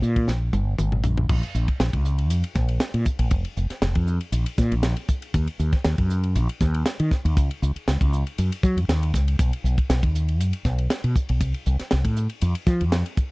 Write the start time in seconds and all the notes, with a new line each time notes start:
0.02 A#2, hi-hat pedal
0.16 kick, ride
0.28 A#1, snare, hi-hat pedal
0.53 G1, hi-hat pedal, high tom
0.78 G#1, hi-hat pedal, mid tom
0.92 mid tom
1.04 A#1, floor tom, hi-hat pedal
1.18 floor tom
1.29 A#1, kick, crash
1.43 ride
1.55 A#1, hi-hat pedal
1.68 kick, ride
1.80 A#1, snare, hi-hat pedal, ride
1.93 C#2, kick, ride
2.05 hi-hat pedal
2.18 ride
2.30 F2, hi-hat pedal, ride
2.44 ride
2.55 A#1, kick, snare, hi-hat pedal
2.69 ride
2.80 snare, hi-hat pedal, ride
2.94 A#2, ride
3.05 kick, hi-hat pedal
3.19 A#1, ride
3.31 F1, kick, hi-hat pedal, ride
3.45 ride
3.57 F1, hi-hat pedal
3.70 snare, ride
3.82 F1, snare, hi-hat pedal, ride
3.95 F2, kick, ride
4.07 hi-hat pedal
4.21 ride
4.32 A#1, hi-hat pedal, ride
4.46 ride
4.58 A#2, kick, snare, hi-hat pedal
4.72 A#1, ride
4.83 snare, hi-hat pedal, ride
4.97 ride
5.08 kick, hi-hat pedal
5.22 ride
5.34 D#2, kick, hi-hat pedal, ride
5.47 ride
5.59 D#2, hi-hat pedal
5.72 kick, snare, ride
5.84 D#2, snare, hi-hat pedal, ride
5.98 F#2, kick, ride
6.10 hi-hat pedal
6.23 ride
6.35 A#1, hi-hat pedal, ride
6.49 ride
6.61 D#2, kick, snare, hi-hat pedal
6.74 ride
6.86 snare, hi-hat pedal, ride
7.00 D#3, ride
7.11 kick, snare, hi-hat pedal
7.25 D#2, ride
7.37 C#2, kick, hi-hat pedal, ride
7.51 ride
7.62 C#2, hi-hat pedal
7.76 muted fretless electric bass stroke, ride
7.88 C#2, snare, hi-hat pedal, ride
8.01 C#2, kick, ride
8.13 hi-hat pedal
8.27 ride
8.38 F#2, hi-hat pedal, ride
8.52 ride
8.63 F#3, kick, hi-hat pedal
8.77 F#2, ride
8.88 D#2, snare, hi-hat pedal, ride
9.03 ride
9.14 C#2, kick, snare, hi-hat pedal
9.28 ride
9.39 B1, kick, hi-hat pedal, ride
9.53 ride
9.64 B1, hi-hat pedal
9.78 kick, ride
9.89 B1, snare, hi-hat pedal, ride
10.03 D#2, kick, ride
10.15 hi-hat pedal
10.28 ride
10.40 F#2, hi-hat pedal, ride
10.53 ride
10.65 B1, kick, snare, hi-hat pedal
10.78 ride
10.90 snare, hi-hat pedal, ride
11.04 B2, ride
11.16 kick, hi-hat pedal
11.29 B1, ride
11.40 C2, kick, hi-hat pedal, ride
11.54 ride
11.66 C2, hi-hat pedal
11.79 snare, ride
11.91 C2, snare, hi-hat pedal, ride
12.05 A2, kick, ride
12.16 hi-hat pedal
12.29 ride
12.41 F2, hi-hat pedal, ride
12.55 ride
12.67 F3, kick, snare, hi-hat pedal
12.81 F2, ride
12.92 snare, hi-hat pedal, ride
13.06 ride
13.17 kick, hi-hat pedal